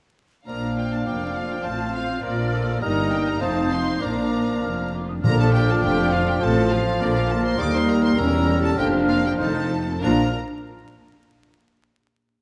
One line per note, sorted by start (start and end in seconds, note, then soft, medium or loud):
0.46 0.96 A#1 soft
0.46 0.96 A#2 soft
0.46 2.77 F3 soft
0.46 1.61 A#3 soft
0.46 0.62 A#3 soft
0.46 1.61 D4 soft
0.46 2.77 F4 soft
0.46 1.67 D5 soft
0.46 2.19 F5 soft
0.46 0.74 A#5 soft
0.46 2.77 F6 soft
0.63 0.77 D4 soft
0.77 0.92 F4 soft
0.77 0.92 G5 soft
0.92 1.07 D4 soft
0.92 1.07 A5 soft
1.05 1.55 F1 soft
1.05 1.55 F2 soft
1.05 1.22 A#3 soft
1.05 1.61 D5 soft
1.05 1.35 G5 soft
1.24 1.37 D4 soft
1.35 1.52 F4 soft
1.35 1.50 F5 soft
1.50 1.66 D4 soft
1.50 1.65 G5 soft
1.64 2.13 A1 soft
1.64 2.14 A2 soft
1.64 1.80 A3 soft
1.64 2.23 C4 soft
1.64 2.19 C4 soft
1.64 2.81 F4 soft
1.64 2.25 C5 soft
1.64 1.93 A5 medium
1.81 1.95 C4 soft
1.93 2.10 F4 soft
1.93 2.22 F5 medium
2.10 2.24 C4 soft
2.23 2.72 A#1 soft
2.23 2.72 A#2 soft
2.23 3.40 A#3 soft
2.23 2.37 A#3 soft
2.23 2.78 A#3 medium
2.23 2.52 A#4 soft
2.23 2.80 A#4 soft
2.23 2.80 D5 medium
2.23 2.82 D5 soft
2.38 2.53 D4 soft
2.53 2.67 F4 soft
2.53 2.81 A4 soft
2.68 2.82 A#4 soft
2.80 3.31 G1 medium
2.80 3.31 G2 medium
2.80 3.42 G3 medium
2.80 3.37 A#3 soft
2.80 2.96 A#3 medium
2.80 3.98 D#4 medium
2.80 3.37 D#4 soft
2.80 3.36 A#4 soft
2.80 3.43 A#4 medium
2.80 3.40 D#5 soft
2.80 3.10 A#5 medium
2.80 3.36 D#6 medium
2.97 3.11 D#4 soft
3.11 3.26 G4 soft
3.11 3.26 G5 medium
3.26 3.41 A#4 soft
3.26 3.41 A#5 medium
3.40 3.90 F1 medium
3.40 3.91 F2 medium
3.40 4.01 F3 medium
3.40 3.55 A3 soft
3.40 4.00 C4 soft
3.40 4.01 C4 soft
3.40 4.00 D#4 soft
3.40 4.03 C5 medium
3.40 5.03 F5 soft
3.40 3.70 A5 medium
3.40 4.02 D#6 medium
3.57 3.71 C4 soft
3.70 3.86 D#4 soft
3.70 4.01 C6 medium
3.87 4.02 F4 soft
4.00 4.52 A#1 soft
4.00 4.52 A#2 soft
4.00 4.91 F3 soft
4.00 5.02 A#3 soft
4.00 4.91 A#3 soft
4.00 4.16 A#3 soft
4.00 5.02 D4 soft
4.00 4.93 D4 soft
4.00 4.93 A#4 soft
4.00 4.93 D5 soft
4.00 4.93 A#5 medium
4.00 4.55 D6 soft
4.19 4.33 D4 soft
4.34 4.48 F4 soft
4.48 4.63 D4 soft
4.62 5.13 F1 soft
4.62 5.13 F2 medium
4.62 4.78 A#3 soft
4.62 4.91 F6 soft
4.79 4.93 D4 soft
4.93 5.09 F4 soft
4.93 5.08 D6 soft
5.08 5.24 D4 soft
5.08 5.14 D#6 soft
5.22 5.73 A#1 medium
5.22 5.73 A#2 medium
5.22 6.08 A#2 medium
5.22 5.38 D3 medium
5.22 7.54 F3 medium
5.22 7.55 F3 medium
5.22 6.38 D4 medium
5.22 7.60 F4 medium
5.22 6.43 D5 medium
5.22 5.37 A#5 loud
5.22 6.74 F6 medium
5.26 5.39 A#4 medium
5.39 5.54 F3 medium
5.39 5.54 A4 medium
5.39 5.53 A5 medium
5.53 5.68 D3 medium
5.53 5.68 G4 medium
5.53 5.67 G5 medium
5.69 5.83 F3 medium
5.69 5.75 A4 medium
5.69 5.83 A5 medium
5.82 6.32 F1 medium
5.82 6.32 F2 medium
5.82 5.98 D3 medium
5.82 6.12 G4 medium
5.82 6.11 G5 medium
5.98 6.12 F3 medium
6.12 6.27 D3 medium
6.12 6.27 F4 medium
6.12 6.27 F5 medium
6.27 6.42 F3 soft
6.27 6.42 G4 medium
6.27 6.41 G5 medium
6.41 6.90 A1 medium
6.41 6.90 A2 medium
6.41 6.56 C3 medium
6.41 7.01 C4 medium
6.41 6.70 A4 medium
6.41 7.02 C5 medium
6.41 6.71 A5 medium
6.57 6.71 F3 medium
6.71 6.86 C3 medium
6.71 6.80 F4 medium
6.71 7.00 F5 medium
6.87 7.01 F3 soft
7.00 7.49 A#1 medium
7.00 7.49 A#2 medium
7.00 7.14 D3 medium
7.00 8.17 A#3 medium
7.00 8.18 A#3 medium
7.00 7.15 D4 medium
7.00 9.37 A#4 medium
7.00 7.15 D5 medium
7.00 7.58 D6 medium
7.15 7.29 F3 medium
7.15 7.29 F4 medium
7.15 7.30 F5 medium
7.30 7.44 D3 soft
7.30 7.44 A4 medium
7.30 7.44 A5 medium
7.45 7.59 F3 soft
7.45 7.58 C5 medium
7.45 7.59 C6 medium
7.58 8.07 D#2 medium
7.58 7.72 D3 medium
7.58 8.79 G3 medium
7.58 8.75 G3 medium
7.58 8.20 D#4 medium
7.58 7.64 D5 medium
7.58 7.73 D6 medium
7.58 8.16 D#6 medium
7.73 7.88 D#3 medium
7.73 7.79 C5 medium
7.73 7.88 C6 medium
7.88 8.02 G3 medium
7.88 8.02 A#4 medium
7.88 8.03 A#5 medium
8.02 8.17 D#3 soft
8.02 8.08 C5 medium
8.02 8.17 C6 medium
8.16 8.67 E1 medium
8.16 8.67 E2 medium
8.16 8.31 C#3 medium
8.16 8.77 C#4 medium
8.16 8.78 C#4 medium
8.16 8.60 A#4 medium
8.16 8.62 A#5 medium
8.16 8.80 E6 medium
8.31 8.46 E3 medium
8.46 8.61 G3 medium
8.61 8.77 E3 medium
8.61 8.68 A4 medium
8.61 8.77 A5 medium
8.76 9.29 F1 medium
8.76 9.28 F2 medium
8.76 8.91 D3 medium
8.76 9.71 F3 medium
8.76 9.39 A#3 medium
8.76 9.37 D4 medium
8.76 9.38 D4 medium
8.76 9.41 D4 medium
8.76 9.07 G4 medium
8.76 8.86 G5 medium
8.76 9.72 F6 medium
8.93 9.08 F3 medium
9.08 9.23 A#3 medium
9.08 9.23 F4 medium
9.08 9.23 F5 medium
9.23 9.39 F3 soft
9.23 9.38 G4 medium
9.23 9.32 G5 medium
9.38 9.93 F1 medium
9.38 9.92 F2 medium
9.38 9.53 D#3 soft
9.38 9.72 C4 medium
9.38 9.80 D#4 medium
9.38 9.71 D#4 soft
9.38 9.71 D#4 medium
9.38 10.01 A4 medium
9.38 9.70 C5 medium
9.38 10.02 A5 medium
9.55 9.71 F3 soft
9.70 9.87 A3 soft
9.87 10.03 C4 soft
10.02 10.38 A#1 medium
10.02 10.32 A#2 soft
10.02 10.37 A#2 medium
10.02 10.30 F3 medium
10.02 10.37 D4 soft
10.02 10.29 D4 medium
10.02 10.30 D4 soft
10.02 10.38 F4 soft
10.02 10.30 F4 soft
10.02 10.29 A#4 medium
10.02 10.38 A#4 medium
10.02 10.38 A#5 medium
10.02 10.37 F6 soft